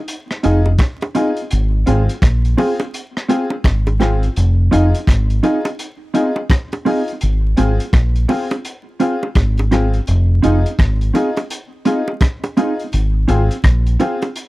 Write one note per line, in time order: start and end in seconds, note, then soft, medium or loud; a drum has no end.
0.08 closed hi-hat medium
0.31 cross-stick medium
0.43 0.76 F1 loud
0.43 0.58 C4 medium
0.43 0.66 D#4 medium
0.43 0.59 D#4 medium
0.43 0.67 F4 medium
0.43 0.67 G#4 loud
0.43 0.59 G#4 medium
0.43 closed hi-hat medium
0.66 high bongo medium
0.78 kick loud
0.78 cross-stick loud
0.78 closed hi-hat medium
0.78 high bongo medium
1.01 closed hi-hat soft
1.01 high bongo medium
1.15 1.30 C4 medium
1.15 1.38 D#4 medium
1.15 1.30 D#4 medium
1.15 1.38 F4 medium
1.15 1.30 G#4 medium
1.15 1.38 G#4 loud
1.15 closed hi-hat medium
1.15 low bongo medium
1.37 closed hi-hat medium
1.51 1.83 G#1 loud
1.51 closed hi-hat medium
1.86 2.07 G#1 loud
1.86 2.09 C4 medium
1.86 2.02 C4 medium
1.86 2.09 F4 medium
1.86 2.02 F4 loud
1.86 2.10 G#4 medium
1.86 2.02 G#4 loud
1.86 closed hi-hat medium
2.09 closed hi-hat soft
2.22 2.54 A#1 medium
2.22 kick loud
2.22 cross-stick loud
2.22 closed hi-hat medium
2.45 closed hi-hat soft
2.57 2.80 C4 medium
2.57 2.73 C4 medium
2.57 2.81 F4 medium
2.57 2.73 F4 medium
2.57 2.81 G#4 loud
2.57 2.73 G#4 loud
2.57 open hi-hat medium
2.57 low bongo medium
2.80 closed hi-hat soft
2.80 high bongo medium
2.94 closed hi-hat medium
3.17 cross-stick medium
3.28 3.44 C4 medium
3.28 3.52 C4 medium
3.28 3.52 F4 medium
3.28 3.44 F4 medium
3.28 3.52 G#4 loud
3.28 3.44 G#4 medium
3.28 closed hi-hat medium
3.50 high bongo medium
3.64 4.27 G#1 medium
3.64 kick loud
3.64 cross-stick loud
3.64 closed hi-hat medium
3.64 high bongo medium
3.86 closed hi-hat soft
3.86 high bongo medium
4.00 4.15 C4 medium
4.00 4.23 C4 loud
4.00 4.23 F4 medium
4.00 4.15 F4 medium
4.00 4.15 G#4 medium
4.00 4.24 G#4 medium
4.00 cross-stick medium
4.00 closed hi-hat medium
4.00 low bongo medium
4.23 closed hi-hat soft
4.36 4.68 F1 loud
4.36 closed hi-hat medium
4.71 4.92 F1 loud
4.71 4.86 C4 medium
4.71 4.95 D#4 medium
4.71 4.87 D#4 loud
4.71 4.95 F4 medium
4.71 4.95 G#4 loud
4.71 4.87 G#4 loud
4.71 closed hi-hat medium
4.94 closed hi-hat medium
5.07 5.39 G#1 medium
5.07 kick loud
5.07 cross-stick loud
5.07 closed hi-hat loud
5.30 closed hi-hat soft
5.43 5.58 C4 medium
5.43 5.66 D#4 medium
5.43 5.58 D#4 medium
5.43 5.66 F4 medium
5.43 5.58 G#4 medium
5.43 5.66 G#4 loud
5.43 closed hi-hat medium
5.43 low bongo medium
5.65 closed hi-hat soft
5.65 high bongo medium
5.79 closed hi-hat medium
6.14 6.29 C4 medium
6.14 6.37 D#4 medium
6.14 6.29 D#4 medium
6.14 6.37 F4 medium
6.14 6.38 G#4 loud
6.14 6.30 G#4 medium
6.14 closed hi-hat medium
6.36 high bongo medium
6.50 kick loud
6.50 cross-stick loud
6.50 closed hi-hat medium
6.50 high bongo medium
6.72 closed hi-hat soft
6.72 high bongo medium
6.85 7.00 C4 medium
6.85 7.09 D#4 medium
6.85 7.01 D#4 medium
6.85 7.09 F4 medium
6.85 7.01 G#4 medium
6.85 7.09 G#4 loud
6.85 open hi-hat medium
6.85 low bongo medium
7.08 closed hi-hat soft
7.21 7.53 G#1 loud
7.21 closed hi-hat medium
7.57 7.78 G#1 medium
7.57 7.80 C4 medium
7.57 7.72 C4 medium
7.57 7.80 F4 medium
7.57 7.72 F4 medium
7.57 7.80 G#4 loud
7.57 7.73 G#4 medium
7.57 closed hi-hat medium
7.80 closed hi-hat medium
7.93 8.24 A#1 medium
7.93 kick loud
7.93 cross-stick loud
7.93 closed hi-hat medium
8.16 closed hi-hat soft
8.28 8.51 C4 medium
8.28 8.44 C4 medium
8.28 8.52 F4 medium
8.28 8.44 F4 medium
8.28 8.44 G#4 medium
8.28 8.52 G#4 medium
8.28 open hi-hat medium
8.28 low bongo medium
8.51 closed hi-hat soft
8.51 high bongo medium
8.65 closed hi-hat medium
9.00 9.15 C4 medium
9.00 9.23 C4 medium
9.00 9.15 F4 medium
9.00 9.23 F4 medium
9.00 9.15 G#4 medium
9.00 9.24 G#4 medium
9.00 closed hi-hat medium
9.23 high bongo medium
9.35 9.98 G#1 medium
9.35 kick loud
9.35 cross-stick loud
9.35 closed hi-hat medium
9.35 high bongo medium
9.57 closed hi-hat soft
9.57 high bongo medium
9.71 9.86 C4 medium
9.71 9.95 C4 medium
9.71 9.86 F4 medium
9.71 9.95 F4 medium
9.71 9.87 G#4 medium
9.71 9.95 G#4 medium
9.71 cross-stick medium
9.71 closed hi-hat medium
9.71 low bongo medium
9.93 closed hi-hat soft
10.07 10.39 F1 loud
10.07 closed hi-hat medium
10.42 10.63 F1 loud
10.42 10.58 C4 medium
10.42 10.66 D#4 medium
10.42 10.58 D#4 loud
10.42 10.66 F4 medium
10.42 10.58 G#4 medium
10.42 10.66 G#4 loud
10.42 closed hi-hat medium
10.66 closed hi-hat soft
10.79 11.10 G#1 medium
10.79 kick loud
10.79 cross-stick loud
10.79 closed hi-hat medium
11.01 closed hi-hat medium
11.14 11.29 C4 medium
11.14 11.37 D#4 medium
11.14 11.29 D#4 medium
11.14 11.37 F4 medium
11.14 11.30 G#4 medium
11.14 11.38 G#4 loud
11.14 closed hi-hat medium
11.14 low bongo medium
11.36 closed hi-hat soft
11.36 high bongo medium
11.50 closed hi-hat medium
11.85 12.00 C4 medium
11.85 12.08 D#4 medium
11.85 12.01 D#4 medium
11.85 12.09 F4 medium
11.85 12.01 G#4 medium
11.85 12.09 G#4 medium
11.85 closed hi-hat medium
12.08 high bongo medium
12.21 kick loud
12.21 cross-stick loud
12.21 closed hi-hat medium
12.21 high bongo medium
12.44 closed hi-hat soft
12.44 high bongo medium
12.57 12.72 C4 medium
12.57 12.80 D#4 medium
12.57 12.72 D#4 medium
12.57 12.80 F4 medium
12.57 12.80 G#4 loud
12.57 12.72 G#4 medium
12.57 closed hi-hat medium
12.57 low bongo medium
12.79 closed hi-hat soft
12.93 13.24 G#1 loud
12.93 closed hi-hat medium
13.28 13.48 G#1 medium
13.28 13.43 C4 medium
13.28 13.51 C4 medium
13.28 13.43 F4 medium
13.28 13.51 F4 medium
13.28 13.43 G#4 medium
13.28 13.52 G#4 loud
13.28 closed hi-hat medium
13.51 closed hi-hat medium
13.64 13.95 A#1 medium
13.64 kick loud
13.64 cross-stick loud
13.64 closed hi-hat medium
13.86 closed hi-hat soft
14.00 14.15 C4 medium
14.00 14.23 C4 medium
14.00 14.15 F4 medium
14.00 14.23 F4 medium
14.00 14.23 G#4 loud
14.00 14.15 G#4 medium
14.00 closed hi-hat medium
14.00 low bongo medium
14.22 closed hi-hat soft
14.22 high bongo medium
14.36 closed hi-hat medium